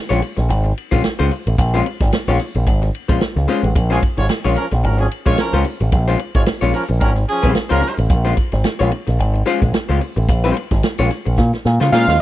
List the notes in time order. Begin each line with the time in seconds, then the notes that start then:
0.09 A#1 G#3 C#4 F4 C#5, ride bell
0.22 muted hollow-body jazz guitar stroke, open hi-hat, ride bell
0.37 A#1, muted hollow-body jazz guitar stroke, snare, ride bell
0.49 G#1, muted hollow-body jazz guitar stroke, hi-hat pedal, ride bell
0.64 muted hollow-body jazz guitar stroke, ride bell
0.78 ride bell
0.91 A#1 G#3 C#4 F4 C5, kick, ride bell
1.03 muted hollow-body jazz guitar stroke, muted picked electric bass stroke, snare, ride bell
1.19 C#2 G#3 C#4 F4 C5, ride bell
1.31 muted hollow-body jazz guitar stroke, open hi-hat, ride bell
1.47 A1, muted hollow-body jazz guitar stroke, ride bell
1.58 A#1, muted hollow-body jazz guitar stroke, kick, hi-hat pedal, ride bell
1.74 G#3 C#4 F4 C5, ride bell
1.86 muted hollow-body jazz guitar stroke, ride bell
2.00 G#1, muted hollow-body jazz guitar stroke, kick, snare, ride bell
2.12 muted hollow-body jazz guitar stroke, snare, ride bell
2.27 A#1 G#3 C#4 F4 C#5, ride bell
2.40 muted hollow-body jazz guitar stroke, snare, open hi-hat, ride bell
2.55 A#1, muted hollow-body jazz guitar stroke, ride bell
2.66 G#1, muted hollow-body jazz guitar stroke, kick, hi-hat pedal, ride bell
2.82 muted hollow-body jazz guitar stroke, snare, ride bell
2.95 ride bell
3.08 A#1 G#3 C#4 F4 C5, kick, ride bell
3.21 muted picked electric bass stroke, muted hollow-body jazz guitar stroke, snare, ride bell
3.36 C#2, muted hollow-body jazz guitar stroke, snare
3.48 G#3 C#4 F4 C5, open hi-hat, ride bell
3.63 A1, muted hollow-body jazz guitar stroke, ride bell
3.75 A#1, muted hollow-body jazz guitar stroke, kick, hi-hat pedal, ride bell
3.90 F3 G#3 C#4 F4 G#4 C5, ride bell
4.02 muted hollow-body jazz guitar stroke, kick, ride bell
4.17 G#1 G#3 F4 C#5, muted hollow-body jazz guitar stroke, snare, ride bell
4.29 muted hollow-body jazz guitar stroke, snare, ride bell
4.44 A#1 G#3 C#4 F4 C#5, ride bell
4.56 F3 C#4 A#4, muted hollow-body jazz guitar stroke, ride bell
4.71 A#1, muted hollow-body jazz guitar stroke, snare, ride bell
4.83 G#1 F3 C#4 A#4, muted hollow-body jazz guitar stroke, ride bell
4.98 F3 C#4 G#4, muted hollow-body jazz guitar stroke, ride bell
5.11 ride bell
5.26 A#1 G#3 C#4 F4 C5 C#5, kick, ride bell
5.38 F3 C#4 A#4, muted hollow-body jazz guitar stroke, snare, ride bell
5.53 C#2 G#3 C#4 F4 C5, ride bell
5.65 muted hollow-body jazz guitar stroke, open hi-hat, ride bell
5.80 A1, muted hollow-body jazz guitar stroke, ride bell
5.92 A#1, muted hollow-body jazz guitar stroke, kick, hi-hat pedal, ride bell
6.07 G#3 C#4 F4 C5, ride bell
6.19 muted hollow-body jazz guitar stroke, ride bell
6.34 G#1 G#3 F4 C#5, muted hollow-body jazz guitar stroke, kick, ride bell
6.46 muted hollow-body jazz guitar stroke, snare, ride bell
6.61 A#1 G#3 C#4 F4 C#5, ride bell
6.73 F3 C#4 A#4, muted hollow-body jazz guitar stroke, snare, open hi-hat, ride bell
6.88 A#1, muted hollow-body jazz guitar stroke, ride bell
7.00 G#1 F3 C#4 A#4, muted hollow-body jazz guitar stroke, kick, hi-hat pedal, ride bell
7.16 muted hollow-body jazz guitar stroke, snare, ride bell
7.28 F3 C#4 G#4, ride bell
7.43 A#1 G#3 C#4 F4 C5, kick, ride bell
7.54 muted hollow-body jazz guitar stroke, snare, ride bell
7.69 C#2 F3 G#3 C#4 F4 A#4 C5, snare, ride bell
7.82 muted hollow-body jazz guitar stroke, open hi-hat, ride bell
7.97 A1, muted hollow-body jazz guitar stroke, ride bell
8.09 A#1, muted hollow-body jazz guitar stroke, kick, hi-hat pedal, ride bell
8.25 G#3 C#4 F4 C5, snare, ride bell
8.36 muted hollow-body jazz guitar stroke, kick, ride bell
8.52 G#1, muted hollow-body jazz guitar stroke, snare, ride bell
8.64 muted hollow-body jazz guitar stroke, snare, ride bell
8.79 A#1 G#3 C#4 F4 C#5, ride bell
8.91 muted hollow-body jazz guitar stroke, ride bell
9.07 A#1, muted hollow-body jazz guitar stroke, snare, ride bell
9.19 G#1, muted hollow-body jazz guitar stroke, ride bell
9.34 muted hollow-body jazz guitar stroke, ride bell
9.46 G#3 C#4 F4 C5, ride bell
9.62 A#1, muted hollow-body jazz guitar stroke, kick, ride bell
9.74 muted hollow-body jazz guitar stroke, muted picked electric bass stroke, snare, ride bell
9.89 C#2 G#3 C#4 F4 C5
10.00 muted hollow-body jazz guitar stroke, open hi-hat, ride bell
10.16 A1, muted hollow-body jazz guitar stroke, ride bell
10.29 A#1, muted hollow-body jazz guitar stroke, kick, hi-hat pedal, ride bell
10.44 G#3 C#4 F4 C5
10.56 muted hollow-body jazz guitar stroke, ride bell
10.71 G#1, muted hollow-body jazz guitar stroke, kick, snare, ride bell
10.83 muted hollow-body jazz guitar stroke, snare, ride bell
10.98 A#1 G#3 C#4 F4 C#5, ride bell
11.10 muted hollow-body jazz guitar stroke, snare, ride bell
11.25 A#1, muted hollow-body jazz guitar stroke, ride bell
11.38 A#2, muted hollow-body jazz guitar stroke, kick, snare
11.53 muted hollow-body jazz guitar stroke, snare
11.65 A#2, snare
11.80 C#3 G#3 C#4 F4 C5, snare
11.92 A#2 G#3 C#4 F4 C5 F5, snare
12.08 D#2, snare